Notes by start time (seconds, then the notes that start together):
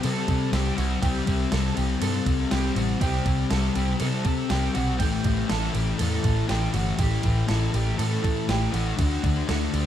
0.03 C3 G3 C4 A4, crash
0.27 C3 G3 C4, kick, crash
0.52 C2 C3 G3 C4 G4, snare, crash
0.77 C2 G3 C4 F#4, crash
1.01 C2 C3 G3 C4 G4, kick, crash
1.26 C2 G3 C4, kick, crash
1.51 C2 C3 G3 C4 A4, snare, crash
1.75 C2 G3 C4 G4, crash
2.00 G2 C3 G3 C4 A4, crash
2.25 C2 G3 C4, kick, crash
2.50 C2 C3 G3 C4 G4, snare, crash
2.75 A1 G3 C4 F#4, crash
2.99 C2 C3 G3 C4 G4, kick, crash
3.25 C2 G3 C4, kick, crash
3.50 C2 C3 G3 C4 A4, snare, crash
3.75 C2 G3 C4 G4, crash
3.99 C3 G3 C4 A4, crash
4.25 C3 G3 C4, kick, crash
4.49 C2 C3 G3 C4 G4, snare, crash
4.74 B1 C4 F#4, crash
4.78 G3
4.98 A1 A2 E3 A3 G4, kick, crash
5.24 A1 E3 A3, kick, crash
5.49 A1 A2 E3 A3 A4, snare, crash
5.73 A1 E3 A3 G4, crash
5.98 E2 A2 E3 A3 A4, crash
6.24 A1 E3 A3, kick, crash
6.48 A1 A2 E3 A3 G4, snare, crash
6.74 G1 E3 A3 F#4, crash
6.98 A1 A2 E3 A3 G4, kick, crash
7.23 A1 E3 A3, kick, crash
7.47 A1 A2 E3 A3 A4, snare, crash
7.73 A1 E3 A3 G4, crash
7.97 A2 E3 A3 A4, crash
8.23 A2 E3 A3, kick, crash
8.48 A1 A2 E3 A3 G4, snare, crash
8.72 A1 E3 A3 F#4, crash
8.97 D2 D3 A3 D4 F#4, kick, crash
9.23 D2 A3 D4, kick, crash
9.48 D2 D3 A3 D4 A4, snare, crash
9.72 D2 A3 D4 G4, crash